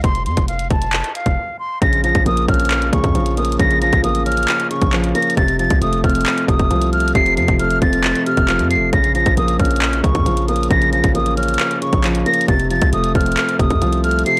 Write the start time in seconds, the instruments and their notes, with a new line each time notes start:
0.04 808-style bass F1, flute C6, kick, closed hi-hat
0.15 closed hi-hat
0.26 808-style bass F2, flute C6, closed hi-hat
0.37 808-style bass F1, kick, closed hi-hat
0.48 flute F5, closed hi-hat
0.59 closed hi-hat
0.70 808-style bass F1, flute A5, kick, closed hi-hat, open hi-hat
0.82 closed hi-hat
0.93 clap, closed hi-hat
1.04 closed hi-hat
1.15 flute F5, closed hi-hat
1.26 808-style bass F1, kick, closed hi-hat
1.59 flute C6
1.82 808-style bass A#1, grand piano C#3, flute A#6, kick, closed hi-hat
1.93 closed hi-hat
2.04 grand piano F3, flute A#6, closed hi-hat
2.15 808-style bass A#1, kick, closed hi-hat
2.26 808-style bass A#1, grand piano A#3, flute D#6, closed hi-hat
2.37 closed hi-hat
2.48 808-style bass A#1, grand piano C#4, flute F6, kick, closed hi-hat
2.54 closed hi-hat
2.60 closed hi-hat
2.65 closed hi-hat
2.71 clap, closed hi-hat
2.82 closed hi-hat
2.93 808-style bass C#2, grand piano C#3, flute C#6, kick, closed hi-hat
3.04 808-style bass F2, kick, closed hi-hat
3.15 808-style bass A#1, grand piano F3, closed hi-hat
3.26 closed hi-hat
3.37 grand piano A#3, flute D#6, closed hi-hat
3.45 closed hi-hat
3.52 closed hi-hat
3.59 808-style bass A#1, grand piano C#3, flute A#6, kick, closed hi-hat
3.71 closed hi-hat
3.82 grand piano F3, flute A#6, closed hi-hat
3.93 808-style bass A1, kick, closed hi-hat
4.04 grand piano A#3, flute D#6, closed hi-hat
4.15 closed hi-hat
4.26 grand piano C#4, flute F6, closed hi-hat, open hi-hat
4.32 closed hi-hat
4.37 closed hi-hat
4.43 closed hi-hat
4.48 clap, closed hi-hat
4.60 closed hi-hat
4.70 grand piano C#3, flute C#6, closed hi-hat
4.82 808-style bass A#1, kick, closed hi-hat
4.93 grand piano F3, clap, closed hi-hat
5.04 closed hi-hat
5.15 grand piano A#3, flute A#6, closed hi-hat
5.22 closed hi-hat
5.30 closed hi-hat
5.37 808-style bass F1, grand piano C3, flute A6, kick, closed hi-hat
5.48 closed hi-hat
5.59 grand piano F3, flute A6, closed hi-hat
5.70 808-style bass C2, kick, closed hi-hat
5.82 808-style bass F1, grand piano A3, flute D#6, closed hi-hat
5.93 closed hi-hat
6.04 808-style bass F1, grand piano C4, flute F6, kick, closed hi-hat
6.10 closed hi-hat
6.15 closed hi-hat
6.21 closed hi-hat
6.26 clap, closed hi-hat
6.38 closed hi-hat
6.48 808-style bass F1, grand piano C3, flute D#6, kick, closed hi-hat
6.59 kick, closed hi-hat
6.70 808-style bass C2, grand piano F3, closed hi-hat
6.82 closed hi-hat
6.93 grand piano A3, flute F6, closed hi-hat
7.00 closed hi-hat
7.08 closed hi-hat
7.15 808-style bass F1, grand piano C3, flute C7, kick, closed hi-hat
7.26 closed hi-hat
7.37 808-style bass F2, grand piano F3, flute C7, closed hi-hat
7.48 808-style bass F1, kick, closed hi-hat
7.59 grand piano A3, flute F6, closed hi-hat
7.71 closed hi-hat
7.82 808-style bass F1, grand piano C4, flute A6, kick, closed hi-hat, open hi-hat
7.93 closed hi-hat
8.04 clap, closed hi-hat
8.15 closed hi-hat
8.26 grand piano C3, flute F6, closed hi-hat
8.37 808-style bass F1, kick, closed hi-hat
8.48 grand piano F3, clap, closed hi-hat
8.59 808-style bass F2, closed hi-hat
8.70 grand piano A3, flute C7, closed hi-hat
8.76 808-style bass F1
8.93 808-style bass A#1, grand piano C#3, flute A#6, kick, closed hi-hat
9.04 closed hi-hat
9.15 grand piano F3, flute A#6, closed hi-hat
9.26 808-style bass A#1, kick, closed hi-hat
9.37 808-style bass A#1, grand piano A#3, flute D#6, closed hi-hat
9.48 closed hi-hat
9.59 808-style bass A#1, grand piano C#4, flute F6, kick, closed hi-hat
9.65 closed hi-hat
9.71 closed hi-hat
9.76 closed hi-hat
9.82 clap, closed hi-hat
9.93 closed hi-hat
10.04 808-style bass C#2, grand piano C#3, flute C#6, kick, closed hi-hat
10.15 808-style bass F2, kick, closed hi-hat
10.26 808-style bass A#1, grand piano F3, closed hi-hat
10.37 closed hi-hat
10.48 grand piano A#3, flute D#6, closed hi-hat
10.56 closed hi-hat
10.63 closed hi-hat
10.70 808-style bass A#1, grand piano C#3, flute A#6, kick, closed hi-hat
10.82 closed hi-hat
10.93 grand piano F3, flute A#6, closed hi-hat
11.04 808-style bass A1, kick, closed hi-hat
11.15 grand piano A#3, flute D#6, closed hi-hat
11.26 closed hi-hat
11.37 grand piano C#4, flute F6, closed hi-hat, open hi-hat
11.43 closed hi-hat
11.48 closed hi-hat
11.54 closed hi-hat
11.59 clap, closed hi-hat
11.71 closed hi-hat
11.81 grand piano C#3, flute C#6, closed hi-hat
11.93 808-style bass A#1, kick, closed hi-hat
12.04 grand piano F3, clap, closed hi-hat
12.15 closed hi-hat
12.26 grand piano A#3, flute A#6, closed hi-hat
12.34 closed hi-hat
12.41 closed hi-hat
12.48 808-style bass F1, grand piano C3, flute A6, kick, closed hi-hat
12.59 closed hi-hat
12.70 grand piano F3, flute A6, closed hi-hat
12.82 808-style bass C2, kick, closed hi-hat
12.93 808-style bass F1, grand piano A3, flute D#6, closed hi-hat
13.04 closed hi-hat
13.15 808-style bass F1, grand piano C4, flute F6, kick, closed hi-hat
13.21 closed hi-hat
13.26 closed hi-hat
13.32 closed hi-hat
13.37 clap, closed hi-hat
13.49 closed hi-hat
13.59 808-style bass F1, grand piano C3, flute D#6, kick, closed hi-hat
13.70 808-style bass F2, kick, closed hi-hat
13.81 808-style bass C2, grand piano F3, closed hi-hat
13.93 closed hi-hat
14.04 grand piano A3, flute F6, closed hi-hat
14.11 closed hi-hat
14.19 closed hi-hat
14.26 grand piano C3, flute C7, closed hi-hat